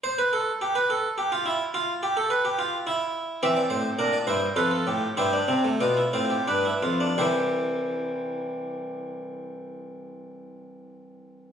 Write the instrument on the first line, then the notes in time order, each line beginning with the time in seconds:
harpsichord
0.04 C5
0.18 B4
0.33 A4
0.61 G4
0.75 B4
0.90 A4
1.18 G4
1.32 F4
1.46 E4
1.74 F4
2.03 G4
2.17 A4
2.30 B4
2.45 G4
2.59 F4
2.87 E4
3.43 E3 C4 G4 E5
3.56 D5
3.70 A2 C5
3.99 A#2 D4 A#4
4.13 D5
4.27 G2 E4 C5
4.56 F2 F4 A4 B4
4.71 A4
4.87 A2 G4
5.17 G2 E4 G4 C5
5.33 D4
5.48 C3 C4
5.64 A3
5.80 B2 B3 F4 D5
5.97 E4
6.13 A2 C4 F4 C5
6.30 G4
6.48 G2 D4 B4
6.65 E4
6.83 F2 F4
7.00 D4
7.18 C2 E3 G3 E4 G4 C5